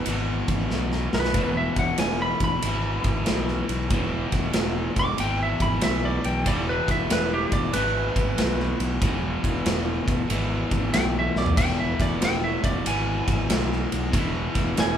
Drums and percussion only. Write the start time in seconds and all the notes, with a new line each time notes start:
0.06 ride
0.48 kick, ride
0.71 snare
0.92 snare
1.13 snare
1.25 snare
1.34 kick, ride
1.76 kick, ride
1.98 snare, ride
2.40 kick, ride
2.62 ride
3.04 kick, ride
3.26 snare, ride
3.48 snare
3.69 ride
3.90 kick, ride
4.32 kick, snare, ride
4.53 snare, ride
4.96 kick, ride
5.18 ride
5.60 kick, ride
5.81 snare, ride
6.24 ride
6.46 kick, ride
6.88 kick, snare, ride
7.10 snare, ride
7.52 kick, ride
7.73 ride
8.16 kick, ride
8.38 snare, ride
8.60 snare
8.80 ride
9.02 kick, ride
9.44 kick, ride
9.66 snare, ride
10.08 kick, ride
10.30 ride
10.71 kick, ride
10.94 snare, ride
11.36 snare
11.46 floor tom
11.57 kick, ride, splash
12.00 kick, snare, ride
12.22 snare, ride
12.64 kick, ride
12.86 ride
13.28 kick, ride
13.50 snare, ride
13.72 snare
13.92 ride
14.13 kick, ride
14.55 kick, snare, ride
14.77 snare, ride